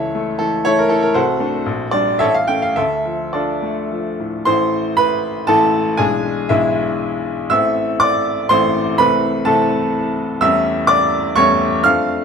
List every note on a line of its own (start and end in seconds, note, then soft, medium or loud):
0.00 1.13 C#2 medium
0.00 0.31 E3 soft
0.00 0.37 A4 medium
0.00 0.38 C#5 medium
0.00 0.41 E5 medium
0.15 0.56 A3 medium
0.39 0.81 E3 medium
0.39 0.65 A4 medium
0.65 1.06 A3 medium
0.65 0.78 E4 medium
0.65 0.78 A4 medium
0.65 0.78 C#5 loud
0.79 0.92 A#4 medium
0.89 1.16 E3 medium
0.89 1.03 A4 medium
1.03 1.16 A#4 medium
1.14 1.65 C2 medium
1.14 1.89 F#4 medium
1.14 1.89 A4 medium
1.14 1.93 C5 medium
1.40 1.64 A3 medium
1.40 1.64 D4 soft
1.66 2.20 A#1 medium
1.91 2.18 G3 soft
1.91 2.19 D4 medium
1.91 2.20 D5 loud
2.19 2.75 A1 medium
2.19 2.34 A4 medium
2.19 2.34 C#5 medium
2.19 2.34 E5 loud
2.34 2.49 F5 medium
2.48 2.74 A3 soft
2.48 2.74 C#4 soft
2.48 2.62 G5 medium
2.62 2.77 F5 medium
2.76 4.43 D2 medium
2.76 3.30 A4 medium
2.76 3.34 E5 medium
3.06 3.52 F3 soft
3.33 3.81 D4 soft
3.33 4.17 F4 medium
3.33 4.17 A4 medium
3.33 4.20 D5 medium
3.63 4.09 A3 soft
3.92 4.37 F3 soft
4.20 4.47 A2 soft
4.45 5.45 A1 medium
4.45 5.45 E3 soft
4.45 5.45 A3 soft
4.45 5.45 E4 soft
4.45 4.95 C5 medium
4.45 4.98 C6 loud
4.97 5.45 B4 medium
4.97 5.48 B5 loud
5.47 5.97 A1 medium
5.47 5.97 E3 medium
5.47 5.97 A3 medium
5.47 5.98 E4 medium
5.47 5.95 A4 medium
5.47 5.98 A5 loud
5.97 6.48 B1 medium
5.97 6.48 E3 soft
5.97 6.48 G#3 medium
5.97 6.48 D4 soft
5.97 6.46 G#4 medium
5.97 6.49 G#5 loud
6.49 7.48 B1 medium
6.49 7.48 E3 medium
6.49 7.48 G#3 medium
6.49 7.48 D4 medium
6.49 7.22 E4 medium
6.49 7.26 E5 medium
7.50 8.48 A1 medium
7.50 8.48 E3 medium
7.50 8.48 A3 medium
7.50 8.47 C4 medium
7.50 7.97 E5 medium
7.50 8.00 E6 loud
8.00 8.47 D5 medium
8.00 8.50 D6 loud
8.49 8.97 A1 medium
8.49 8.98 E3 medium
8.49 8.98 A3 medium
8.49 8.97 C4 medium
8.49 8.96 C5 loud
8.49 8.98 C6 loud
8.98 9.45 C2 medium
8.98 9.45 E3 medium
8.98 9.44 A3 medium
8.98 9.45 C4 medium
8.98 9.44 B4 medium
8.98 9.46 B5 loud
9.45 10.39 C2 medium
9.45 10.39 E3 medium
9.45 10.39 A3 medium
9.45 10.39 C4 medium
9.45 10.14 A4 medium
9.45 10.18 A5 loud
10.41 11.33 E2 medium
10.41 11.33 G3 medium
10.41 11.33 A3 medium
10.41 11.33 C#4 medium
10.41 10.86 E5 loud
10.41 10.89 E6 loud
10.87 11.33 D5 medium
10.87 11.35 D6 loud
11.36 11.83 E2 medium
11.36 11.83 G3 medium
11.36 11.83 A3 medium
11.36 11.83 C#4 medium
11.36 11.81 C#5 loud
11.36 11.84 C#6 loud
11.84 12.24 F2 medium
11.84 12.24 F3 medium
11.84 12.24 A3 medium
11.84 12.24 D4 medium
11.84 12.24 F5 medium
11.84 12.24 F6 loud